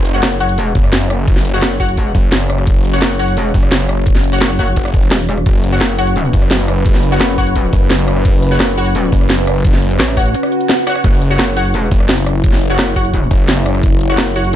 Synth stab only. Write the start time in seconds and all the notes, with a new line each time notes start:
0.14 F#4 C#5 F#5
0.40 F#4 C#5 F#5
1.54 F#4 C#5 F#5
1.80 F#4 C#5 F#5
2.93 F#4 C#5 F#5
3.19 F#4 C#5 F#5
4.33 F#4 C#5 F#5
4.59 F#4 C#5 F#5
5.72 F#4 C#5 F#5
5.98 F#4 C#5 F#5
7.12 F#4 C#5 F#5
7.38 F#4 C#5 F#5
8.51 F#4 C#5 F#5
8.78 F#4 C#5 F#5
10.17 F#4 C#5 F#5
10.87 F#4 C#5 F#5
11.30 F#4 C#5 F#5
11.57 F#4 C#5 F#5
12.70 F#4 C#5 F#5
12.96 F#4 C#5 F#5
14.09 F#4 C#5 F#5
14.36 F#4 C#5 F#5